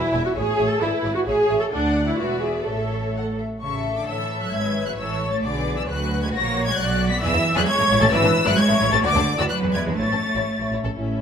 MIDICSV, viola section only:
0, 0, Header, 1, 2, 480
1, 0, Start_track
1, 0, Key_signature, 3, "major"
1, 0, Tempo, 454201
1, 862, Time_signature, 2, 2, 24, 8
1, 2313, Tempo, 473560
1, 4233, Tempo, 449775
1, 9033, Tempo, 473186
1, 11704, End_track
2, 0, Start_track
2, 0, Title_t, "Viola section"
2, 0, Program_c, 0, 48
2, 0, Note_on_c, 0, 64, 90
2, 258, Note_off_c, 0, 64, 0
2, 269, Note_on_c, 0, 66, 89
2, 316, Note_off_c, 0, 66, 0
2, 383, Note_on_c, 0, 68, 110
2, 729, Note_on_c, 0, 69, 96
2, 734, Note_off_c, 0, 68, 0
2, 855, Note_off_c, 0, 69, 0
2, 858, Note_on_c, 0, 64, 93
2, 1213, Note_on_c, 0, 66, 90
2, 1220, Note_off_c, 0, 64, 0
2, 1263, Note_off_c, 0, 66, 0
2, 1331, Note_on_c, 0, 68, 104
2, 1690, Note_off_c, 0, 68, 0
2, 1692, Note_on_c, 0, 69, 81
2, 1742, Note_off_c, 0, 69, 0
2, 1812, Note_on_c, 0, 62, 91
2, 2176, Note_off_c, 0, 62, 0
2, 2187, Note_on_c, 0, 64, 72
2, 2308, Note_on_c, 0, 66, 84
2, 2309, Note_off_c, 0, 64, 0
2, 2540, Note_on_c, 0, 68, 77
2, 2550, Note_off_c, 0, 66, 0
2, 2781, Note_on_c, 0, 69, 69
2, 2790, Note_off_c, 0, 68, 0
2, 3503, Note_off_c, 0, 69, 0
2, 4227, Note_on_c, 0, 76, 76
2, 5154, Note_off_c, 0, 76, 0
2, 5187, Note_on_c, 0, 73, 75
2, 5662, Note_off_c, 0, 73, 0
2, 5677, Note_on_c, 0, 74, 74
2, 6148, Note_off_c, 0, 74, 0
2, 6156, Note_on_c, 0, 71, 76
2, 6634, Note_off_c, 0, 71, 0
2, 6636, Note_on_c, 0, 73, 80
2, 7104, Note_off_c, 0, 73, 0
2, 7104, Note_on_c, 0, 74, 88
2, 7573, Note_off_c, 0, 74, 0
2, 7579, Note_on_c, 0, 76, 95
2, 8053, Note_off_c, 0, 76, 0
2, 8065, Note_on_c, 0, 73, 111
2, 8535, Note_off_c, 0, 73, 0
2, 8551, Note_on_c, 0, 71, 93
2, 9025, Note_off_c, 0, 71, 0
2, 9033, Note_on_c, 0, 73, 103
2, 9499, Note_off_c, 0, 73, 0
2, 9507, Note_on_c, 0, 74, 92
2, 9963, Note_off_c, 0, 74, 0
2, 9974, Note_on_c, 0, 71, 81
2, 10452, Note_off_c, 0, 71, 0
2, 10460, Note_on_c, 0, 73, 65
2, 11184, Note_off_c, 0, 73, 0
2, 11436, Note_on_c, 0, 64, 42
2, 11440, Note_on_c, 0, 69, 41
2, 11704, Note_off_c, 0, 64, 0
2, 11704, Note_off_c, 0, 69, 0
2, 11704, End_track
0, 0, End_of_file